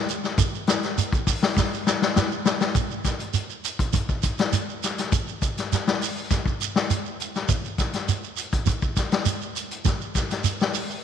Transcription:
0.08 closed hi-hat, shekere
0.24 snare, shekere
0.38 kick, closed hi-hat, shekere
0.55 shekere
0.67 snare, closed hi-hat, shekere
0.83 snare, closed hi-hat, shekere
0.98 closed hi-hat, shekere
1.12 kick, closed hi-hat, shekere
1.27 kick, open hi-hat, shekere
1.43 snare, shekere
1.57 kick, snare, shekere
1.74 shekere
1.87 snare, shekere
2.02 snare, shekere
2.16 snare, shekere
2.31 shekere
2.45 snare, shekere
2.61 snare, shekere
2.75 kick, closed hi-hat, shekere
2.91 shekere
3.05 kick, snare, closed hi-hat, shekere
3.20 closed hi-hat, shekere
3.34 closed hi-hat, shekere
3.50 shekere
3.64 closed hi-hat, shekere
3.79 kick, closed hi-hat, shekere
3.93 kick, closed hi-hat, shekere
4.09 kick, shekere
4.23 kick, closed hi-hat, shekere
4.38 snare, closed hi-hat, shekere
4.53 closed hi-hat, shekere
4.69 shekere
4.83 snare, closed hi-hat, shekere
4.98 snare, closed hi-hat, shekere
5.12 kick, closed hi-hat, shekere
5.28 shekere
5.42 kick, closed hi-hat, shekere
5.58 snare, closed hi-hat, shekere
5.72 snare, closed hi-hat, shekere
5.87 snare, shekere
6.01 open hi-hat, shekere
6.18 shekere
6.31 kick, snare, closed hi-hat, shekere
6.46 kick, shekere
6.60 closed hi-hat, shekere
6.76 snare, shekere
6.90 closed hi-hat, shekere
7.06 shekere
7.20 closed hi-hat, shekere
7.35 snare, shekere
7.49 kick, closed hi-hat, shekere
7.65 shekere
7.78 kick, snare, closed hi-hat, shekere
7.93 snare, closed hi-hat, shekere
8.08 closed hi-hat, shekere
8.24 shekere
8.37 closed hi-hat, shekere
8.52 kick, closed hi-hat, shekere
8.66 kick, closed hi-hat, shekere
8.82 kick, shekere
8.96 kick, snare, closed hi-hat, shekere
9.11 snare, closed hi-hat, shekere
9.26 closed hi-hat, shekere
9.42 shekere
9.56 closed hi-hat, shekere
9.71 closed hi-hat, shekere
9.85 kick, snare, closed hi-hat, shekere
10.01 shekere
10.15 kick, snare, closed hi-hat, shekere
10.30 snare, closed hi-hat, shekere
10.44 closed hi-hat, shekere
10.60 snare, shekere
10.74 open hi-hat, shekere
10.90 shekere

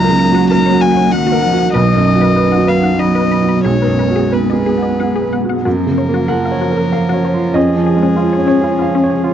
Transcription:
Already playing: C#2 F#3 A#3 D#4 D#5 A#5
0.04 A#4
0.09 C#3
0.19 A#4
0.32 F#4
0.51 A#4 A#5
0.66 C#5
0.72 F#4
0.81 F#4 G#5
0.91 F#5
0.97 C#5
1.10 D#3 F#4 F#5
1.27 F#4
1.32 A#4
1.42 F3 F#5
1.52 F#4
1.58 F#5
1.74 B1 F#3 B3 B4 D#5
1.89 D#5
1.95 F#2
2.05 D#5
2.15 F#4
2.21 B4
2.36 B4 D#5
2.52 F#5
2.57 F#4
2.67 B4 F5
2.77 F#5
2.83 F#5
2.98 F#3 F#4 D#5 B5
3.15 B4
3.21 B4
3.32 B5
3.43 F#4
3.49 B5
3.65 B1 G#3 G#4 C#5 F#5
3.82 B4
3.86 F#2
3.99 B4
4.10 F#4
4.16 G#4
4.32 B4
4.50 G#4 D#5
4.66 G#4
4.78 F#5
4.83 D#5
5.00 G#4 F#5
5.16 G#4
5.22 B4
5.33 F#5
5.44 F#4
5.49 F#5
5.63 F#2 F3 C#4 F#4 A#4 C#5
5.87 C#3
5.98 C#5
6.08 A#3
6.14 F#4
6.28 F3 A#4 F#5
6.45 F5
6.51 C#5
6.61 F#4
6.71 A#4
6.77 A#4
6.92 A#4 F5
7.09 F#4
7.14 C#5
7.25 C#5
7.34 F4
7.53 F2 C#4 G#4 D#5
7.76 F3
7.87 G#4
7.96 G#3
8.03 C#4
8.16 F4
8.33 C#5
8.39 C#5
8.47 C#4 C#5
8.61 F4 G#4
8.79 F4 F5
8.95 C#4
9.04 C#5
9.10 G#4
9.24 F4

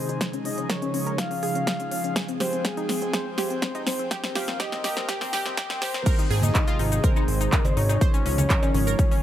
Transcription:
Already playing: C3 D#3 G#3 D#4 G#4 C5
0.09 D#4, closed hi-hat
0.21 C#3 F3 C5, kick, snare, closed hi-hat
0.33 C#4, closed hi-hat
0.45 C#4 D#5, open hi-hat
0.58 C#4, closed hi-hat
0.69 A#4 C#5, kick, snare, closed hi-hat
0.82 C#4, closed hi-hat
0.94 C#4, open hi-hat
1.07 A#4, closed hi-hat
1.18 C#4 F5, kick, snare, closed hi-hat
1.31 C#4, open hi-hat
1.43 G#4, open hi-hat
1.55 C#4, closed hi-hat
1.67 G#4, kick, snare, closed hi-hat
1.80 C#4, closed hi-hat
1.92 C#4 F5, open hi-hat
2.04 C#4, closed hi-hat
2.16 G#3 C4 G#4 G5, kick, snare, closed hi-hat
2.28 C4, closed hi-hat
2.40 G4 C5, snare, open hi-hat
2.53 C4, closed hi-hat
2.65 C4 G#4, kick, snare, closed hi-hat
2.77 D#4, closed hi-hat
2.89 C4, snare, open hi-hat
3.02 C4, closed hi-hat
3.13 G#4 C5, kick, snare, closed hi-hat
3.26 C4
3.38 G4, snare, open hi-hat
3.50 C4, closed hi-hat
3.62 C4, kick, snare, closed hi-hat
3.75 D#4, closed hi-hat
3.87 C4 C5, snare, open hi-hat
3.99 C4, closed hi-hat
4.11 D#3 G3 A#3 G4 A#4, kick, snare, closed hi-hat
4.24 C4, snare, closed hi-hat
4.35 G4 F5, snare, open hi-hat
4.48 C4, snare, closed hi-hat
4.60 G4 D#5, kick, snare, closed hi-hat
4.72 C4, snare, closed hi-hat
4.84 G4, snare, open hi-hat
4.97 C4, snare, closed hi-hat
5.09 G4 G5, kick, snare, closed hi-hat
5.21 C4, snare, open hi-hat
5.33 G4, snare, open hi-hat
5.46 C4, snare, closed hi-hat
5.57 G4, kick, snare, closed hi-hat
5.70 C4, snare, closed hi-hat
5.82 G4 C5, snare, open hi-hat
5.94 C4, snare, closed hi-hat
6.06 C3 D#3 G#3 D#4 G#4 A#4, kick, closed hi-hat, crash, shaker
6.19 D#4, closed hi-hat, shaker
6.31 G#1 G#4, open hi-hat
6.42 D#4 D#5, closed hi-hat, high conga, shaker
6.55 D#4, kick, clap, closed hi-hat, high woodblock, shaker
6.68 F4, closed hi-hat, shaker
6.79 G#1 D#4, open hi-hat
6.92 D#4, closed hi-hat, shaker
7.04 A#4 C5, kick, closed hi-hat, high conga, shaker
7.16 D#4 C5, high woodblock, shaker
7.28 G#1, open hi-hat
7.41 D#4, closed hi-hat, shaker
7.52 D#4 A#4, kick, clap, closed hi-hat, shaker
7.65 C5, closed hi-hat, cowbell, high conga, shaker
7.77 G#1 D#4 C#5, open hi-hat
7.89 D#4, closed hi-hat, cowbell, high woodblock, shaker
8.01 C#3 F3 G#3 F4 C5, kick, closed hi-hat, shaker
8.14 C#4, closed hi-hat, shaker
8.26 C#2 C#4, open hi-hat
8.38 C#4, closed hi-hat, high conga, shaker
8.50 A#4, kick, clap, closed hi-hat, high woodblock, shaker
8.63 C#4, closed hi-hat, cowbell, shaker
8.74 G#1 C#4, open hi-hat
8.87 A#4, closed hi-hat, shaker
8.99 C#4, kick, closed hi-hat, high conga, shaker
9.11 C#4, open hi-hat, shaker

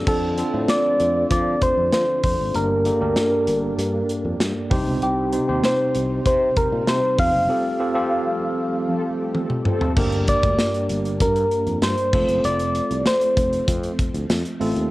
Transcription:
0.07 F2 D3 F3 A3 C4 D4 F4 A4, kick, crash
0.38 C4 D4 F4 A4, closed hi-hat
0.53 A2 C4 D4 F4 C5
0.68 D5, snare, closed hi-hat
1.00 F2, closed hi-hat
1.31 F3 D5, kick, closed hi-hat
1.62 C5, kick, closed hi-hat
1.78 F2
1.93 F3 C5, snare, closed hi-hat
2.23 F2 C5, kick, open hi-hat
2.40 G#1
2.54 G1 G2 G3 A#3 D4 G4 A#4, closed hi-hat
2.85 A#3 D4 G4 A4, closed hi-hat
3.00 D2 A#3 D4 G4 A#4
3.16 snare, closed hi-hat
3.47 G1, closed hi-hat
3.78 G2, closed hi-hat
4.09 closed hi-hat
4.25 F2
4.40 G2, snare, closed hi-hat
4.70 C2 C3 C4 D#4 G4 C5, kick, open hi-hat
4.87 C#2
5.02 C2 G4, closed hi-hat
5.32 C4 D#4 G4 C5, closed hi-hat
5.48 D#2 C4 D#4 G4 C5
5.63 C5, snare, closed hi-hat
5.94 C2, closed hi-hat
6.25 C3 C5, kick, closed hi-hat
6.56 A#4, kick, closed hi-hat
6.72 A#2
6.87 C3 C5, snare, closed hi-hat
7.18 F2 F5, kick, open hi-hat
7.34 F#1
7.49 F3 A3 C4 F4 G4 A4
7.80 C4 F4 G4 A4
7.94 C4 F4 G4 A4
8.88 F3 C4 A4
9.35 F3 C4 A4, high tom
9.50 mid tom
9.65 F3 C4 A4, mid tom
9.81 floor tom
9.96 G1 G2 G3 A#3 D4 G4 A#4, kick, crash
10.12 closed hi-hat
10.28 D5, kick, closed hi-hat
10.43 D2, kick, closed hi-hat
10.59 snare, tambourine
10.74 closed hi-hat
10.89 G1, closed hi-hat
11.05 closed hi-hat
11.20 G2 A#4, kick, closed hi-hat
11.36 closed hi-hat
11.52 closed hi-hat
11.67 F2, closed hi-hat
11.82 G2 C5, snare, tambourine
11.98 closed hi-hat
12.13 F1 F3 A3 C4 F4 A4, kick, crash
12.29 F#1, closed hi-hat
12.44 F1 D5, closed hi-hat
12.59 closed hi-hat
12.75 closed hi-hat
12.91 C2, closed hi-hat
13.06 C5, snare, tambourine
13.21 closed hi-hat
13.37 F1, kick, closed hi-hat
13.53 closed hi-hat
13.68 F2, kick, closed hi-hat
13.83 closed hi-hat
13.99 kick, closed hi-hat
14.14 D2, closed hi-hat
14.30 F2, snare, tambourine
14.45 closed hi-hat
14.60 A1 A3 C4 F4 A4, open hi-hat
14.76 D#2, closed hi-hat

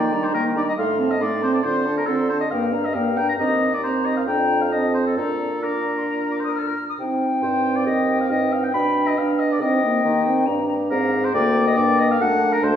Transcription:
Already playing: D#3 A#3 D#4 D5 G5
0.13 G3 D4 A#5
0.24 C5
0.34 D#3 A#3 D#4 A#4 G5
0.56 G3 D4 D5 A#5
0.69 D#5
0.77 A2 A3 D#4 F5 C6
0.99 C4 A5
1.11 D#5
1.21 A2 A3 D#4 D5 C6
1.42 C4 C5 A5
1.54 D5
1.63 D3 C4 F4 C5 C6
1.85 D4 A4 A5
1.97 A#4
2.07 D3 C4 F4 A4 C6
2.29 D4 A4 C5 A5
2.41 D#5
2.51 G2 A#3 G4 F5 G5
2.73 D4 A#4 A#5
2.85 D#5
2.94 G2 A#3 G4 F5 G5
3.17 D4 A#4 G5 A#5
3.29 A#5
3.38 D#2 C4 G4 D#5 A#5
3.73 D5
3.83 C4 G4 C5 A#5
4.06 D#5
4.17 F5
4.27 F2 D4 F4 G5 A#5
4.61 F5
4.71 C4 F4 D#5 A5
4.94 C5
5.07 A4
5.17 A#2 D4 F4 A4 A#5
5.62 D4 F4 A#4 D6
5.98 C6
6.09 A#5
6.31 D6
6.40 C5
6.44 D#6
6.49 A#4
6.54 F6
6.59 A4
6.68 A#4
6.89 D#6
6.98 C3 C4 D#4 G5
7.43 G2 C5
7.76 D5
7.86 D#2 G4 D#5
8.21 F5
8.30 G2 D#4 D#5 G5
8.53 F5
8.64 G5
8.73 B2 D4 B5
9.08 D#5
9.17 B3 D4 F5
9.40 D#5
9.51 D5
9.61 C3 C4 D#4 D#5 G5
9.83 A#3
10.03 D#3 A#3 G4
10.26 C4
10.46 G2 D4 G4 A#5
10.68 A#5
10.90 G#2 C4 A#4 F5
11.24 C5
11.33 D2 A#3 D5 G5
11.67 D#5
11.76 G2 D4 D5
11.99 D#5
12.11 F5
12.20 F#2 A3 D4 F#5 A5
12.53 A#4
12.62 D2 A3 C5 A5

